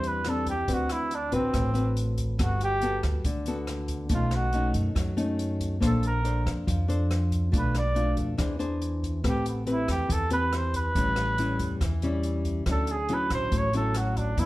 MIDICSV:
0, 0, Header, 1, 5, 480
1, 0, Start_track
1, 0, Tempo, 427960
1, 764, Time_signature, 4, 2, 24, 8
1, 16214, End_track
2, 0, Start_track
2, 0, Title_t, "Flugelhorn"
2, 0, Program_c, 0, 56
2, 80, Note_on_c, 0, 71, 74
2, 329, Note_on_c, 0, 69, 67
2, 346, Note_off_c, 0, 71, 0
2, 546, Note_off_c, 0, 69, 0
2, 554, Note_on_c, 0, 67, 78
2, 821, Note_on_c, 0, 66, 74
2, 837, Note_off_c, 0, 67, 0
2, 1029, Note_on_c, 0, 64, 74
2, 1046, Note_off_c, 0, 66, 0
2, 1286, Note_on_c, 0, 62, 76
2, 1302, Note_off_c, 0, 64, 0
2, 1494, Note_off_c, 0, 62, 0
2, 1501, Note_on_c, 0, 60, 80
2, 2168, Note_off_c, 0, 60, 0
2, 2718, Note_on_c, 0, 66, 71
2, 2926, Note_off_c, 0, 66, 0
2, 2953, Note_on_c, 0, 67, 99
2, 3387, Note_off_c, 0, 67, 0
2, 4641, Note_on_c, 0, 65, 75
2, 4883, Note_on_c, 0, 66, 83
2, 4900, Note_off_c, 0, 65, 0
2, 5345, Note_off_c, 0, 66, 0
2, 6577, Note_on_c, 0, 69, 70
2, 6777, Note_off_c, 0, 69, 0
2, 6805, Note_on_c, 0, 70, 82
2, 7235, Note_off_c, 0, 70, 0
2, 8503, Note_on_c, 0, 71, 72
2, 8701, Note_off_c, 0, 71, 0
2, 8721, Note_on_c, 0, 74, 85
2, 9153, Note_off_c, 0, 74, 0
2, 10420, Note_on_c, 0, 67, 74
2, 10620, Note_off_c, 0, 67, 0
2, 10638, Note_on_c, 0, 59, 46
2, 10817, Note_off_c, 0, 59, 0
2, 10893, Note_on_c, 0, 64, 75
2, 11111, Note_off_c, 0, 64, 0
2, 11115, Note_on_c, 0, 67, 80
2, 11351, Note_on_c, 0, 69, 79
2, 11368, Note_off_c, 0, 67, 0
2, 11577, Note_off_c, 0, 69, 0
2, 11584, Note_on_c, 0, 71, 83
2, 11841, Note_on_c, 0, 72, 74
2, 11857, Note_off_c, 0, 71, 0
2, 12064, Note_off_c, 0, 72, 0
2, 12070, Note_on_c, 0, 71, 96
2, 13214, Note_off_c, 0, 71, 0
2, 14259, Note_on_c, 0, 69, 83
2, 14483, Note_on_c, 0, 68, 85
2, 14500, Note_off_c, 0, 69, 0
2, 14732, Note_on_c, 0, 71, 82
2, 14748, Note_off_c, 0, 68, 0
2, 14949, Note_off_c, 0, 71, 0
2, 14956, Note_on_c, 0, 72, 93
2, 15228, Note_on_c, 0, 73, 95
2, 15245, Note_off_c, 0, 72, 0
2, 15430, Note_off_c, 0, 73, 0
2, 15437, Note_on_c, 0, 69, 75
2, 15667, Note_on_c, 0, 66, 66
2, 15683, Note_off_c, 0, 69, 0
2, 15895, Note_on_c, 0, 62, 78
2, 15911, Note_off_c, 0, 66, 0
2, 16143, Note_on_c, 0, 64, 77
2, 16160, Note_off_c, 0, 62, 0
2, 16214, Note_off_c, 0, 64, 0
2, 16214, End_track
3, 0, Start_track
3, 0, Title_t, "Nylon-string guitar"
3, 0, Program_c, 1, 24
3, 0, Note_on_c, 1, 52, 54
3, 0, Note_on_c, 1, 55, 59
3, 0, Note_on_c, 1, 60, 58
3, 0, Note_on_c, 1, 62, 64
3, 246, Note_off_c, 1, 55, 0
3, 249, Note_off_c, 1, 60, 0
3, 251, Note_off_c, 1, 62, 0
3, 289, Note_on_c, 1, 55, 44
3, 298, Note_on_c, 1, 60, 52
3, 301, Note_on_c, 1, 62, 49
3, 596, Note_off_c, 1, 55, 0
3, 598, Note_off_c, 1, 60, 0
3, 601, Note_off_c, 1, 62, 0
3, 739, Note_off_c, 1, 52, 0
3, 758, Note_on_c, 1, 50, 50
3, 764, Note_on_c, 1, 60, 43
3, 766, Note_on_c, 1, 66, 47
3, 768, Note_on_c, 1, 71, 54
3, 1240, Note_off_c, 1, 60, 0
3, 1242, Note_off_c, 1, 71, 0
3, 1243, Note_off_c, 1, 66, 0
3, 1476, Note_on_c, 1, 60, 55
3, 1486, Note_on_c, 1, 66, 57
3, 1489, Note_on_c, 1, 71, 71
3, 1697, Note_off_c, 1, 50, 0
3, 1711, Note_on_c, 1, 45, 50
3, 1922, Note_off_c, 1, 60, 0
3, 1927, Note_off_c, 1, 66, 0
3, 1928, Note_off_c, 1, 71, 0
3, 1949, Note_on_c, 1, 60, 63
3, 1954, Note_on_c, 1, 66, 59
3, 1962, Note_on_c, 1, 71, 66
3, 2639, Note_off_c, 1, 60, 0
3, 2642, Note_off_c, 1, 66, 0
3, 2644, Note_off_c, 1, 71, 0
3, 2654, Note_off_c, 1, 45, 0
3, 2674, Note_on_c, 1, 59, 48
3, 2680, Note_on_c, 1, 55, 47
3, 2685, Note_on_c, 1, 66, 53
3, 2689, Note_on_c, 1, 69, 51
3, 3121, Note_off_c, 1, 59, 0
3, 3126, Note_off_c, 1, 66, 0
3, 3129, Note_off_c, 1, 69, 0
3, 3168, Note_on_c, 1, 59, 62
3, 3173, Note_on_c, 1, 66, 61
3, 3175, Note_on_c, 1, 69, 64
3, 3620, Note_off_c, 1, 55, 0
3, 3645, Note_off_c, 1, 59, 0
3, 3645, Note_on_c, 1, 50, 56
3, 3646, Note_off_c, 1, 69, 0
3, 3647, Note_off_c, 1, 66, 0
3, 3895, Note_on_c, 1, 59, 58
3, 3901, Note_on_c, 1, 66, 62
3, 3902, Note_on_c, 1, 69, 70
3, 4573, Note_off_c, 1, 59, 0
3, 4574, Note_off_c, 1, 66, 0
3, 4576, Note_off_c, 1, 69, 0
3, 4582, Note_off_c, 1, 50, 0
3, 4595, Note_on_c, 1, 57, 57
3, 4597, Note_on_c, 1, 47, 50
3, 4602, Note_on_c, 1, 61, 46
3, 4603, Note_on_c, 1, 63, 53
3, 5042, Note_off_c, 1, 57, 0
3, 5044, Note_off_c, 1, 61, 0
3, 5047, Note_off_c, 1, 63, 0
3, 5084, Note_on_c, 1, 61, 59
3, 5086, Note_on_c, 1, 57, 55
3, 5095, Note_on_c, 1, 63, 60
3, 5539, Note_off_c, 1, 47, 0
3, 5551, Note_on_c, 1, 54, 54
3, 5767, Note_off_c, 1, 61, 0
3, 5769, Note_off_c, 1, 57, 0
3, 5773, Note_off_c, 1, 63, 0
3, 5794, Note_on_c, 1, 57, 52
3, 5797, Note_on_c, 1, 61, 61
3, 5802, Note_on_c, 1, 63, 62
3, 6484, Note_off_c, 1, 57, 0
3, 6484, Note_off_c, 1, 61, 0
3, 6486, Note_off_c, 1, 63, 0
3, 6496, Note_off_c, 1, 54, 0
3, 6508, Note_on_c, 1, 58, 52
3, 6514, Note_on_c, 1, 62, 50
3, 6520, Note_on_c, 1, 69, 52
3, 6525, Note_on_c, 1, 72, 58
3, 6963, Note_off_c, 1, 62, 0
3, 6966, Note_off_c, 1, 69, 0
3, 6967, Note_off_c, 1, 72, 0
3, 6999, Note_on_c, 1, 62, 55
3, 7004, Note_on_c, 1, 69, 57
3, 7010, Note_on_c, 1, 72, 63
3, 7455, Note_off_c, 1, 58, 0
3, 7479, Note_on_c, 1, 53, 51
3, 7686, Note_off_c, 1, 62, 0
3, 7689, Note_off_c, 1, 69, 0
3, 7690, Note_off_c, 1, 72, 0
3, 7719, Note_on_c, 1, 62, 61
3, 7723, Note_on_c, 1, 69, 62
3, 7729, Note_on_c, 1, 72, 66
3, 8406, Note_off_c, 1, 62, 0
3, 8407, Note_off_c, 1, 69, 0
3, 8410, Note_off_c, 1, 72, 0
3, 8420, Note_off_c, 1, 53, 0
3, 8432, Note_on_c, 1, 47, 44
3, 8433, Note_on_c, 1, 57, 51
3, 8442, Note_on_c, 1, 62, 50
3, 8442, Note_on_c, 1, 65, 52
3, 8749, Note_off_c, 1, 57, 0
3, 8754, Note_off_c, 1, 65, 0
3, 8755, Note_off_c, 1, 62, 0
3, 8913, Note_on_c, 1, 57, 58
3, 8921, Note_on_c, 1, 62, 49
3, 8930, Note_on_c, 1, 65, 64
3, 9377, Note_off_c, 1, 47, 0
3, 9381, Note_off_c, 1, 62, 0
3, 9382, Note_off_c, 1, 57, 0
3, 9390, Note_off_c, 1, 65, 0
3, 9395, Note_on_c, 1, 62, 56
3, 9400, Note_on_c, 1, 52, 54
3, 9404, Note_on_c, 1, 68, 50
3, 9412, Note_on_c, 1, 72, 56
3, 9603, Note_off_c, 1, 62, 0
3, 9609, Note_off_c, 1, 68, 0
3, 9611, Note_off_c, 1, 72, 0
3, 9636, Note_on_c, 1, 62, 60
3, 9641, Note_on_c, 1, 72, 70
3, 9645, Note_on_c, 1, 68, 60
3, 10324, Note_off_c, 1, 62, 0
3, 10326, Note_off_c, 1, 72, 0
3, 10328, Note_off_c, 1, 68, 0
3, 10340, Note_off_c, 1, 52, 0
3, 10359, Note_on_c, 1, 57, 53
3, 10361, Note_on_c, 1, 60, 50
3, 10365, Note_on_c, 1, 67, 51
3, 10369, Note_on_c, 1, 71, 53
3, 10805, Note_off_c, 1, 60, 0
3, 10809, Note_off_c, 1, 71, 0
3, 10810, Note_off_c, 1, 67, 0
3, 10840, Note_on_c, 1, 60, 54
3, 10847, Note_on_c, 1, 67, 59
3, 10848, Note_on_c, 1, 71, 66
3, 11300, Note_off_c, 1, 57, 0
3, 11310, Note_on_c, 1, 52, 53
3, 11527, Note_off_c, 1, 60, 0
3, 11528, Note_off_c, 1, 67, 0
3, 11528, Note_off_c, 1, 71, 0
3, 11558, Note_on_c, 1, 60, 66
3, 11562, Note_on_c, 1, 67, 66
3, 11568, Note_on_c, 1, 71, 63
3, 12246, Note_off_c, 1, 60, 0
3, 12246, Note_off_c, 1, 67, 0
3, 12247, Note_off_c, 1, 71, 0
3, 12255, Note_off_c, 1, 52, 0
3, 12288, Note_on_c, 1, 45, 47
3, 12294, Note_on_c, 1, 55, 49
3, 12294, Note_on_c, 1, 61, 50
3, 12301, Note_on_c, 1, 64, 53
3, 12732, Note_off_c, 1, 55, 0
3, 12732, Note_off_c, 1, 61, 0
3, 12736, Note_off_c, 1, 64, 0
3, 12766, Note_on_c, 1, 55, 53
3, 12773, Note_on_c, 1, 64, 66
3, 12774, Note_on_c, 1, 61, 55
3, 13224, Note_off_c, 1, 45, 0
3, 13245, Note_off_c, 1, 55, 0
3, 13246, Note_off_c, 1, 61, 0
3, 13247, Note_off_c, 1, 64, 0
3, 13249, Note_on_c, 1, 52, 51
3, 13496, Note_on_c, 1, 55, 66
3, 13496, Note_on_c, 1, 61, 64
3, 13504, Note_on_c, 1, 64, 68
3, 14172, Note_off_c, 1, 61, 0
3, 14173, Note_off_c, 1, 55, 0
3, 14177, Note_off_c, 1, 64, 0
3, 14183, Note_off_c, 1, 52, 0
3, 14214, Note_on_c, 1, 50, 47
3, 14217, Note_on_c, 1, 54, 45
3, 14224, Note_on_c, 1, 61, 48
3, 14226, Note_on_c, 1, 64, 55
3, 14522, Note_off_c, 1, 54, 0
3, 14524, Note_off_c, 1, 61, 0
3, 14524, Note_off_c, 1, 64, 0
3, 14684, Note_on_c, 1, 54, 63
3, 14691, Note_on_c, 1, 61, 57
3, 14691, Note_on_c, 1, 64, 60
3, 15146, Note_off_c, 1, 50, 0
3, 15155, Note_on_c, 1, 45, 55
3, 15366, Note_off_c, 1, 54, 0
3, 15369, Note_off_c, 1, 64, 0
3, 15370, Note_off_c, 1, 61, 0
3, 15408, Note_on_c, 1, 54, 67
3, 15415, Note_on_c, 1, 61, 62
3, 15420, Note_on_c, 1, 64, 68
3, 16088, Note_off_c, 1, 54, 0
3, 16092, Note_off_c, 1, 61, 0
3, 16094, Note_off_c, 1, 64, 0
3, 16096, Note_off_c, 1, 45, 0
3, 16126, Note_on_c, 1, 43, 50
3, 16127, Note_on_c, 1, 53, 50
3, 16132, Note_on_c, 1, 59, 51
3, 16137, Note_on_c, 1, 64, 60
3, 16214, Note_off_c, 1, 43, 0
3, 16214, Note_off_c, 1, 53, 0
3, 16214, Note_off_c, 1, 59, 0
3, 16214, Note_off_c, 1, 64, 0
3, 16214, End_track
4, 0, Start_track
4, 0, Title_t, "Upright bass"
4, 0, Program_c, 2, 32
4, 0, Note_on_c, 2, 40, 85
4, 716, Note_off_c, 2, 40, 0
4, 767, Note_on_c, 2, 38, 84
4, 1441, Note_off_c, 2, 38, 0
4, 1486, Note_on_c, 2, 33, 73
4, 1709, Note_off_c, 2, 33, 0
4, 1727, Note_on_c, 2, 33, 88
4, 2641, Note_off_c, 2, 33, 0
4, 2682, Note_on_c, 2, 31, 89
4, 3359, Note_off_c, 2, 31, 0
4, 3401, Note_on_c, 2, 38, 77
4, 3626, Note_off_c, 2, 38, 0
4, 3639, Note_on_c, 2, 38, 85
4, 4558, Note_off_c, 2, 38, 0
4, 4596, Note_on_c, 2, 35, 80
4, 5277, Note_off_c, 2, 35, 0
4, 5316, Note_on_c, 2, 42, 79
4, 5544, Note_off_c, 2, 42, 0
4, 5555, Note_on_c, 2, 42, 82
4, 6477, Note_off_c, 2, 42, 0
4, 6523, Note_on_c, 2, 34, 85
4, 7201, Note_off_c, 2, 34, 0
4, 7247, Note_on_c, 2, 41, 80
4, 7471, Note_off_c, 2, 41, 0
4, 7487, Note_on_c, 2, 41, 88
4, 8403, Note_off_c, 2, 41, 0
4, 8448, Note_on_c, 2, 35, 85
4, 9124, Note_off_c, 2, 35, 0
4, 9164, Note_on_c, 2, 41, 71
4, 9389, Note_off_c, 2, 41, 0
4, 9409, Note_on_c, 2, 40, 87
4, 10324, Note_off_c, 2, 40, 0
4, 10365, Note_on_c, 2, 33, 75
4, 11042, Note_off_c, 2, 33, 0
4, 11086, Note_on_c, 2, 40, 78
4, 11310, Note_off_c, 2, 40, 0
4, 11324, Note_on_c, 2, 40, 87
4, 12241, Note_off_c, 2, 40, 0
4, 12285, Note_on_c, 2, 33, 82
4, 12961, Note_off_c, 2, 33, 0
4, 13001, Note_on_c, 2, 40, 72
4, 13227, Note_off_c, 2, 40, 0
4, 13245, Note_on_c, 2, 40, 89
4, 14161, Note_off_c, 2, 40, 0
4, 14203, Note_on_c, 2, 38, 88
4, 14879, Note_off_c, 2, 38, 0
4, 14922, Note_on_c, 2, 33, 73
4, 15147, Note_off_c, 2, 33, 0
4, 15162, Note_on_c, 2, 33, 81
4, 16079, Note_off_c, 2, 33, 0
4, 16124, Note_on_c, 2, 31, 82
4, 16214, Note_off_c, 2, 31, 0
4, 16214, End_track
5, 0, Start_track
5, 0, Title_t, "Drums"
5, 40, Note_on_c, 9, 42, 37
5, 152, Note_off_c, 9, 42, 0
5, 275, Note_on_c, 9, 37, 54
5, 275, Note_on_c, 9, 42, 41
5, 387, Note_off_c, 9, 37, 0
5, 387, Note_off_c, 9, 42, 0
5, 519, Note_on_c, 9, 36, 23
5, 522, Note_on_c, 9, 42, 37
5, 631, Note_off_c, 9, 36, 0
5, 634, Note_off_c, 9, 42, 0
5, 762, Note_on_c, 9, 36, 58
5, 764, Note_on_c, 9, 42, 51
5, 874, Note_off_c, 9, 36, 0
5, 876, Note_off_c, 9, 42, 0
5, 1003, Note_on_c, 9, 37, 54
5, 1003, Note_on_c, 9, 42, 42
5, 1115, Note_off_c, 9, 37, 0
5, 1115, Note_off_c, 9, 42, 0
5, 1245, Note_on_c, 9, 42, 40
5, 1357, Note_off_c, 9, 42, 0
5, 1481, Note_on_c, 9, 42, 40
5, 1483, Note_on_c, 9, 36, 25
5, 1593, Note_off_c, 9, 42, 0
5, 1595, Note_off_c, 9, 36, 0
5, 1724, Note_on_c, 9, 36, 57
5, 1724, Note_on_c, 9, 37, 60
5, 1724, Note_on_c, 9, 42, 54
5, 1836, Note_off_c, 9, 36, 0
5, 1836, Note_off_c, 9, 37, 0
5, 1836, Note_off_c, 9, 42, 0
5, 1963, Note_on_c, 9, 42, 38
5, 2075, Note_off_c, 9, 42, 0
5, 2206, Note_on_c, 9, 42, 47
5, 2318, Note_off_c, 9, 42, 0
5, 2442, Note_on_c, 9, 36, 25
5, 2442, Note_on_c, 9, 42, 48
5, 2554, Note_off_c, 9, 36, 0
5, 2554, Note_off_c, 9, 42, 0
5, 2683, Note_on_c, 9, 36, 59
5, 2683, Note_on_c, 9, 37, 55
5, 2683, Note_on_c, 9, 42, 61
5, 2795, Note_off_c, 9, 36, 0
5, 2795, Note_off_c, 9, 37, 0
5, 2795, Note_off_c, 9, 42, 0
5, 2923, Note_on_c, 9, 42, 46
5, 3035, Note_off_c, 9, 42, 0
5, 3156, Note_on_c, 9, 42, 41
5, 3268, Note_off_c, 9, 42, 0
5, 3401, Note_on_c, 9, 36, 23
5, 3401, Note_on_c, 9, 37, 57
5, 3401, Note_on_c, 9, 42, 45
5, 3513, Note_off_c, 9, 36, 0
5, 3514, Note_off_c, 9, 37, 0
5, 3514, Note_off_c, 9, 42, 0
5, 3640, Note_on_c, 9, 36, 56
5, 3640, Note_on_c, 9, 42, 54
5, 3752, Note_off_c, 9, 36, 0
5, 3752, Note_off_c, 9, 42, 0
5, 3878, Note_on_c, 9, 42, 42
5, 3990, Note_off_c, 9, 42, 0
5, 4119, Note_on_c, 9, 37, 60
5, 4119, Note_on_c, 9, 42, 42
5, 4231, Note_off_c, 9, 37, 0
5, 4231, Note_off_c, 9, 42, 0
5, 4354, Note_on_c, 9, 42, 45
5, 4357, Note_on_c, 9, 36, 25
5, 4466, Note_off_c, 9, 42, 0
5, 4469, Note_off_c, 9, 36, 0
5, 4591, Note_on_c, 9, 42, 58
5, 4596, Note_on_c, 9, 36, 61
5, 4703, Note_off_c, 9, 42, 0
5, 4708, Note_off_c, 9, 36, 0
5, 4835, Note_on_c, 9, 37, 61
5, 4835, Note_on_c, 9, 42, 39
5, 4947, Note_off_c, 9, 37, 0
5, 4947, Note_off_c, 9, 42, 0
5, 5076, Note_on_c, 9, 42, 36
5, 5188, Note_off_c, 9, 42, 0
5, 5317, Note_on_c, 9, 36, 22
5, 5317, Note_on_c, 9, 42, 42
5, 5429, Note_off_c, 9, 36, 0
5, 5429, Note_off_c, 9, 42, 0
5, 5558, Note_on_c, 9, 36, 50
5, 5562, Note_on_c, 9, 37, 56
5, 5562, Note_on_c, 9, 42, 53
5, 5670, Note_off_c, 9, 36, 0
5, 5675, Note_off_c, 9, 37, 0
5, 5675, Note_off_c, 9, 42, 0
5, 5805, Note_on_c, 9, 42, 37
5, 5917, Note_off_c, 9, 42, 0
5, 6046, Note_on_c, 9, 42, 47
5, 6158, Note_off_c, 9, 42, 0
5, 6282, Note_on_c, 9, 36, 23
5, 6288, Note_on_c, 9, 42, 42
5, 6394, Note_off_c, 9, 36, 0
5, 6400, Note_off_c, 9, 42, 0
5, 6525, Note_on_c, 9, 36, 63
5, 6532, Note_on_c, 9, 37, 54
5, 6532, Note_on_c, 9, 42, 60
5, 6637, Note_off_c, 9, 36, 0
5, 6644, Note_off_c, 9, 37, 0
5, 6644, Note_off_c, 9, 42, 0
5, 6762, Note_on_c, 9, 42, 46
5, 6874, Note_off_c, 9, 42, 0
5, 7008, Note_on_c, 9, 42, 43
5, 7120, Note_off_c, 9, 42, 0
5, 7245, Note_on_c, 9, 36, 25
5, 7253, Note_on_c, 9, 37, 55
5, 7253, Note_on_c, 9, 42, 42
5, 7357, Note_off_c, 9, 36, 0
5, 7365, Note_off_c, 9, 37, 0
5, 7365, Note_off_c, 9, 42, 0
5, 7486, Note_on_c, 9, 36, 57
5, 7492, Note_on_c, 9, 42, 54
5, 7598, Note_off_c, 9, 36, 0
5, 7604, Note_off_c, 9, 42, 0
5, 7735, Note_on_c, 9, 42, 43
5, 7847, Note_off_c, 9, 42, 0
5, 7972, Note_on_c, 9, 37, 58
5, 7972, Note_on_c, 9, 42, 44
5, 8084, Note_off_c, 9, 37, 0
5, 8084, Note_off_c, 9, 42, 0
5, 8206, Note_on_c, 9, 36, 25
5, 8211, Note_on_c, 9, 42, 42
5, 8319, Note_off_c, 9, 36, 0
5, 8324, Note_off_c, 9, 42, 0
5, 8448, Note_on_c, 9, 36, 62
5, 8452, Note_on_c, 9, 42, 58
5, 8560, Note_off_c, 9, 36, 0
5, 8564, Note_off_c, 9, 42, 0
5, 8689, Note_on_c, 9, 37, 59
5, 8689, Note_on_c, 9, 42, 39
5, 8801, Note_off_c, 9, 37, 0
5, 8801, Note_off_c, 9, 42, 0
5, 8928, Note_on_c, 9, 42, 37
5, 9041, Note_off_c, 9, 42, 0
5, 9163, Note_on_c, 9, 42, 39
5, 9164, Note_on_c, 9, 36, 26
5, 9275, Note_off_c, 9, 42, 0
5, 9276, Note_off_c, 9, 36, 0
5, 9405, Note_on_c, 9, 37, 56
5, 9405, Note_on_c, 9, 42, 53
5, 9406, Note_on_c, 9, 36, 59
5, 9517, Note_off_c, 9, 37, 0
5, 9517, Note_off_c, 9, 42, 0
5, 9518, Note_off_c, 9, 36, 0
5, 9646, Note_on_c, 9, 42, 39
5, 9758, Note_off_c, 9, 42, 0
5, 9889, Note_on_c, 9, 42, 44
5, 10001, Note_off_c, 9, 42, 0
5, 10128, Note_on_c, 9, 36, 25
5, 10138, Note_on_c, 9, 42, 40
5, 10241, Note_off_c, 9, 36, 0
5, 10250, Note_off_c, 9, 42, 0
5, 10366, Note_on_c, 9, 36, 61
5, 10367, Note_on_c, 9, 37, 63
5, 10367, Note_on_c, 9, 42, 59
5, 10479, Note_off_c, 9, 36, 0
5, 10479, Note_off_c, 9, 37, 0
5, 10479, Note_off_c, 9, 42, 0
5, 10608, Note_on_c, 9, 42, 44
5, 10720, Note_off_c, 9, 42, 0
5, 10843, Note_on_c, 9, 42, 43
5, 10955, Note_off_c, 9, 42, 0
5, 11084, Note_on_c, 9, 36, 25
5, 11085, Note_on_c, 9, 37, 62
5, 11085, Note_on_c, 9, 42, 49
5, 11196, Note_off_c, 9, 36, 0
5, 11197, Note_off_c, 9, 37, 0
5, 11197, Note_off_c, 9, 42, 0
5, 11324, Note_on_c, 9, 36, 55
5, 11327, Note_on_c, 9, 42, 60
5, 11436, Note_off_c, 9, 36, 0
5, 11439, Note_off_c, 9, 42, 0
5, 11556, Note_on_c, 9, 42, 43
5, 11668, Note_off_c, 9, 42, 0
5, 11806, Note_on_c, 9, 37, 65
5, 11806, Note_on_c, 9, 42, 46
5, 11918, Note_off_c, 9, 37, 0
5, 11918, Note_off_c, 9, 42, 0
5, 12045, Note_on_c, 9, 36, 25
5, 12046, Note_on_c, 9, 42, 44
5, 12157, Note_off_c, 9, 36, 0
5, 12158, Note_off_c, 9, 42, 0
5, 12285, Note_on_c, 9, 36, 59
5, 12287, Note_on_c, 9, 42, 59
5, 12397, Note_off_c, 9, 36, 0
5, 12400, Note_off_c, 9, 42, 0
5, 12518, Note_on_c, 9, 37, 60
5, 12518, Note_on_c, 9, 42, 42
5, 12630, Note_off_c, 9, 37, 0
5, 12630, Note_off_c, 9, 42, 0
5, 12764, Note_on_c, 9, 42, 41
5, 12877, Note_off_c, 9, 42, 0
5, 13002, Note_on_c, 9, 36, 23
5, 13003, Note_on_c, 9, 42, 40
5, 13114, Note_off_c, 9, 36, 0
5, 13116, Note_off_c, 9, 42, 0
5, 13242, Note_on_c, 9, 36, 58
5, 13246, Note_on_c, 9, 37, 56
5, 13246, Note_on_c, 9, 42, 51
5, 13355, Note_off_c, 9, 36, 0
5, 13358, Note_off_c, 9, 37, 0
5, 13358, Note_off_c, 9, 42, 0
5, 13484, Note_on_c, 9, 42, 38
5, 13596, Note_off_c, 9, 42, 0
5, 13721, Note_on_c, 9, 42, 39
5, 13833, Note_off_c, 9, 42, 0
5, 13963, Note_on_c, 9, 36, 25
5, 13963, Note_on_c, 9, 42, 40
5, 14075, Note_off_c, 9, 36, 0
5, 14075, Note_off_c, 9, 42, 0
5, 14200, Note_on_c, 9, 37, 57
5, 14200, Note_on_c, 9, 42, 54
5, 14201, Note_on_c, 9, 36, 56
5, 14312, Note_off_c, 9, 37, 0
5, 14312, Note_off_c, 9, 42, 0
5, 14314, Note_off_c, 9, 36, 0
5, 14437, Note_on_c, 9, 42, 44
5, 14549, Note_off_c, 9, 42, 0
5, 14677, Note_on_c, 9, 42, 40
5, 14790, Note_off_c, 9, 42, 0
5, 14922, Note_on_c, 9, 36, 26
5, 14922, Note_on_c, 9, 37, 60
5, 14922, Note_on_c, 9, 42, 46
5, 15034, Note_off_c, 9, 36, 0
5, 15034, Note_off_c, 9, 37, 0
5, 15034, Note_off_c, 9, 42, 0
5, 15162, Note_on_c, 9, 36, 56
5, 15163, Note_on_c, 9, 42, 52
5, 15274, Note_off_c, 9, 36, 0
5, 15275, Note_off_c, 9, 42, 0
5, 15403, Note_on_c, 9, 42, 39
5, 15515, Note_off_c, 9, 42, 0
5, 15640, Note_on_c, 9, 37, 62
5, 15640, Note_on_c, 9, 42, 48
5, 15752, Note_off_c, 9, 37, 0
5, 15752, Note_off_c, 9, 42, 0
5, 15881, Note_on_c, 9, 36, 25
5, 15890, Note_on_c, 9, 42, 41
5, 15994, Note_off_c, 9, 36, 0
5, 16002, Note_off_c, 9, 42, 0
5, 16121, Note_on_c, 9, 36, 55
5, 16125, Note_on_c, 9, 42, 60
5, 16214, Note_off_c, 9, 36, 0
5, 16214, Note_off_c, 9, 42, 0
5, 16214, End_track
0, 0, End_of_file